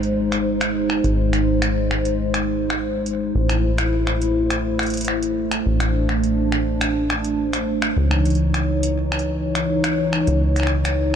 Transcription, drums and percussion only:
0.03 closed hi-hat medium
0.32 finger snap soft
0.32 closed hi-hat medium
0.61 finger snap medium
0.61 closed hi-hat medium
0.90 finger snap soft
1.04 closed hi-hat soft
1.33 finger snap soft
1.33 closed hi-hat medium
1.62 finger snap medium
1.62 closed hi-hat medium
1.91 finger snap soft
2.05 closed hi-hat soft
2.34 finger snap soft
2.34 closed hi-hat medium
2.70 finger snap medium
3.06 closed hi-hat soft
3.50 finger snap soft
3.50 closed hi-hat medium
3.78 finger snap medium
3.78 closed hi-hat medium
4.07 finger snap soft
4.22 closed hi-hat soft
4.50 finger snap soft
4.50 closed hi-hat medium
4.79 finger snap medium
4.79 closed hi-hat soft
4.83 closed hi-hat soft
4.86 closed hi-hat soft
4.90 closed hi-hat medium
4.94 closed hi-hat medium
4.97 closed hi-hat medium
5.01 closed hi-hat medium
5.05 finger snap soft
5.05 closed hi-hat medium
5.23 closed hi-hat soft
5.51 finger snap soft
5.51 closed hi-hat medium
5.80 finger snap medium
5.80 closed hi-hat medium
6.09 finger snap soft
6.23 closed hi-hat soft
6.52 finger snap soft
6.81 finger snap medium
6.81 closed hi-hat medium
7.10 finger snap medium
7.24 closed hi-hat soft
7.53 finger snap soft
7.53 closed hi-hat medium
7.82 finger snap medium
8.11 finger snap soft
8.25 closed hi-hat soft
8.30 closed hi-hat soft
8.35 closed hi-hat soft
8.54 finger snap medium
8.54 closed hi-hat medium
8.83 closed hi-hat medium
9.12 finger snap medium
9.19 closed hi-hat soft
9.55 finger snap medium
9.55 closed hi-hat medium
9.84 finger snap medium
9.84 closed hi-hat medium
10.13 finger snap medium
10.27 closed hi-hat soft
10.56 finger snap soft
10.56 closed hi-hat medium
10.60 finger snap soft
10.63 finger snap soft
10.67 finger snap soft
10.85 finger snap medium
10.85 closed hi-hat medium

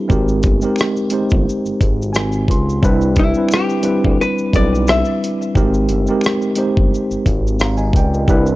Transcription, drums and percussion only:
0.10 kick loud
0.10 shaker medium
0.28 shaker soft
0.43 kick medium
0.43 closed hi-hat medium
0.43 shaker soft
0.61 shaker soft
0.76 finger snap medium
0.76 shaker medium
0.81 cross-stick loud
0.97 shaker soft
1.10 closed hi-hat medium
1.10 shaker medium
1.30 kick medium
1.30 shaker soft
1.49 shaker medium
1.66 shaker soft
1.81 kick medium
1.81 closed hi-hat medium
1.81 shaker soft
2.02 shaker soft
2.14 finger snap medium
2.14 cross-stick loud
2.14 shaker medium
2.32 shaker soft
2.48 kick medium
2.48 closed hi-hat medium
2.48 shaker soft
2.69 shaker soft
2.83 kick loud
2.83 shaker medium
3.01 shaker soft
3.16 kick medium
3.16 closed hi-hat medium
3.16 shaker soft
3.34 shaker soft
3.49 finger snap medium
3.49 shaker medium
3.54 cross-stick loud
3.69 shaker soft
3.83 closed hi-hat medium
3.83 shaker medium
4.04 kick medium
4.22 shaker medium
4.38 shaker soft
4.53 kick loud
4.53 closed hi-hat medium
4.53 shaker soft
4.75 shaker soft
4.87 finger snap medium
4.87 cross-stick loud
4.87 shaker medium
5.05 shaker soft
5.24 closed hi-hat medium
5.24 shaker soft
5.42 shaker soft
5.55 kick loud
5.55 shaker medium
5.74 shaker medium
5.89 closed hi-hat medium
5.89 shaker soft
6.07 shaker soft
6.21 finger snap medium
6.21 shaker medium
6.26 cross-stick loud
6.42 shaker soft
6.55 closed hi-hat medium
6.55 shaker medium
6.77 kick medium
6.94 shaker medium
7.11 shaker soft
7.26 kick loud
7.26 closed hi-hat medium
7.26 shaker soft
7.47 shaker medium
7.59 finger snap medium
7.59 cross-stick loud
7.59 shaker medium
7.77 shaker soft
7.93 kick loud
7.93 closed hi-hat medium
7.93 shaker soft
8.14 shaker soft
8.28 kick loud
8.28 shaker medium
8.46 shaker soft

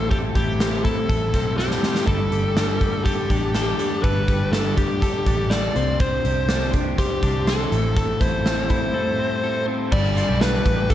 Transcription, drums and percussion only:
0.11 kick loud
0.11 closed hi-hat medium
0.35 kick medium
0.35 closed hi-hat medium
0.60 snare loud
0.60 closed hi-hat medium
0.85 kick medium
0.85 closed hi-hat medium
1.09 kick medium
1.09 closed hi-hat medium
1.34 kick medium
1.34 snare soft
1.34 closed hi-hat medium
1.59 snare soft
1.71 snare soft
1.83 snare medium
1.95 snare medium
2.07 kick loud
2.07 closed hi-hat medium
2.32 closed hi-hat medium
2.57 snare loud
2.57 closed hi-hat medium
2.81 kick medium
2.81 closed hi-hat medium
3.06 kick medium
3.06 closed hi-hat medium
3.30 kick medium
3.30 closed hi-hat medium
3.54 snare medium
3.54 closed hi-hat medium
3.79 closed hi-hat medium
4.04 kick medium
4.04 closed hi-hat medium
4.28 kick medium
4.28 closed hi-hat medium
4.53 snare loud
4.53 closed hi-hat medium
4.77 kick medium
4.77 closed hi-hat medium
5.02 kick medium
5.02 closed hi-hat medium
5.26 kick medium
5.26 closed hi-hat medium
5.51 snare medium
5.51 closed hi-hat medium
5.76 closed hi-hat medium
6.00 kick loud
6.00 closed hi-hat medium
6.25 closed hi-hat medium
6.49 snare loud
6.49 closed hi-hat medium
6.73 kick medium
6.73 closed hi-hat medium
6.98 kick medium
6.98 closed hi-hat medium
7.23 kick medium
7.23 closed hi-hat medium
7.47 snare medium
7.47 closed hi-hat medium
7.72 closed hi-hat medium
7.97 kick loud
7.97 closed hi-hat medium
8.21 kick medium
8.21 closed hi-hat medium
8.46 snare loud
8.46 closed hi-hat medium
8.70 kick medium
8.70 closed hi-hat medium
9.92 kick loud
9.92 crash medium
10.17 closed hi-hat medium
10.41 snare loud
10.41 closed hi-hat medium
10.66 kick medium
10.66 closed hi-hat medium
10.90 kick medium
10.90 closed hi-hat medium

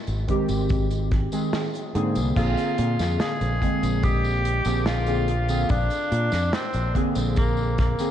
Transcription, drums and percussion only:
0.07 closed hi-hat medium
0.07 tambourine soft
0.28 kick medium
0.28 closed hi-hat medium
0.48 closed hi-hat medium
0.48 tambourine medium
0.69 kick loud
0.69 closed hi-hat medium
0.69 tambourine soft
0.90 closed hi-hat soft
0.90 tambourine soft
1.11 kick loud
1.11 snare soft
1.11 closed hi-hat medium
1.32 closed hi-hat medium
1.32 tambourine medium
1.53 snare loud
1.53 closed hi-hat medium
1.53 tambourine medium
1.74 closed hi-hat medium
1.74 tambourine soft
1.95 closed hi-hat medium
2.15 closed hi-hat medium
2.15 tambourine medium
2.36 kick loud
2.36 closed hi-hat loud
2.36 crash medium
2.36 tambourine soft
2.57 closed hi-hat medium
2.57 tambourine soft
2.78 closed hi-hat medium
2.99 snare soft
2.99 closed hi-hat medium
2.99 tambourine medium
3.20 snare loud
3.20 closed hi-hat medium
3.20 tambourine soft
3.41 closed hi-hat soft
3.41 tambourine soft
3.62 kick medium
3.62 closed hi-hat medium
3.83 closed hi-hat medium
3.83 tambourine medium
4.03 kick loud
4.03 closed hi-hat medium
4.03 tambourine soft
4.24 tambourine soft
4.45 closed hi-hat medium
4.65 closed hi-hat medium
4.65 tambourine medium
4.86 snare loud
4.86 closed hi-hat medium
4.86 tambourine medium
5.07 closed hi-hat medium
5.07 tambourine soft
5.28 closed hi-hat medium
5.49 closed hi-hat medium
5.49 tambourine medium
5.70 kick loud
5.70 closed hi-hat medium
5.70 tambourine soft
5.90 closed hi-hat soft
5.90 tambourine soft
6.12 closed hi-hat loud
6.32 snare soft
6.32 closed hi-hat medium
6.32 tambourine medium
6.53 snare loud
6.53 closed hi-hat medium
6.53 tambourine soft
6.73 closed hi-hat medium
6.73 tambourine soft
6.95 kick medium
6.95 closed hi-hat medium
7.15 closed hi-hat medium
7.15 tambourine medium
7.36 kick loud
7.36 closed hi-hat medium
7.36 tambourine soft
7.57 tambourine soft
7.78 kick loud
7.78 snare soft
7.78 closed hi-hat medium
7.99 closed hi-hat medium
7.99 tambourine medium

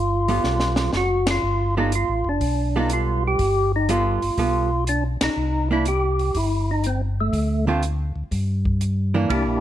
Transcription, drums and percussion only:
0.28 open hi-hat soft
0.44 snare soft
0.60 snare medium
0.76 snare medium
0.93 snare medium
1.27 snare medium
1.27 ride medium
1.92 closed hi-hat soft
2.41 kick soft
2.41 open hi-hat soft
2.90 closed hi-hat medium
3.39 kick soft
3.39 open hi-hat soft
3.89 closed hi-hat medium
4.22 open hi-hat soft
4.38 kick soft
4.38 open hi-hat soft
4.87 closed hi-hat medium
5.21 snare medium
5.21 ride medium
5.85 closed hi-hat medium
6.19 open hi-hat soft
6.35 kick soft
6.35 open hi-hat soft
6.84 closed hi-hat soft
7.33 kick soft
7.33 open hi-hat soft
7.83 closed hi-hat medium
8.32 kick soft
8.32 open hi-hat soft
8.65 kick soft
8.81 closed hi-hat soft
9.30 kick soft
9.30 ride medium

